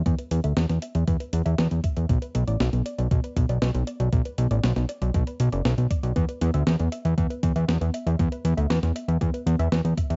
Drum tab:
HH |xxxxxxxxxxxxxxxx|xxxxxxxxxxxxxxxx|xxxxxxxxxxxxxxxx|xxxxxxxxxxxxxxxx|
SD |----oo------o---|----o-------o---|----oo------o---|----o-------o---|
BD |o-------o-----o-|o-------o-o-----|o-------o-----o-|o-------o-o-----|

HH |xxxxxxxxxxxxxxxx|
SD |----oo------o---|
BD |o-------o-----o-|